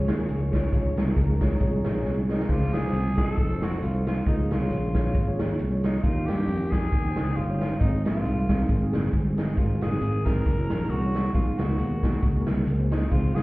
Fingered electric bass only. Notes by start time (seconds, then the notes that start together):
0.09 D#2
0.29 C#2
0.73 C#2
0.97 C2
1.17 C#2
1.61 C2
1.86 A#1
2.05 C2
2.49 C#2
2.74 C2
2.93 C2
3.38 F1
3.82 C2
4.27 C#2
4.51 C2
4.70 A#1
5.15 G#1
5.40 D#2
5.60 C2
6.03 D#2
6.29 G2
6.48 F2
6.92 D#2
7.18 C#2
7.37 G1
7.81 G#1
8.06 A#1
8.26 C2
8.69 G#1
8.94 F#1
9.13 G1
9.58 G#1
9.83 F#1
10.01 G#1
10.46 F#1
10.71 A#1
10.90 C2
11.35 B1
11.59 C#2
11.78 D#2
12.23 C#2
12.47 C2
12.67 C#2
13.12 C#2
13.35 C2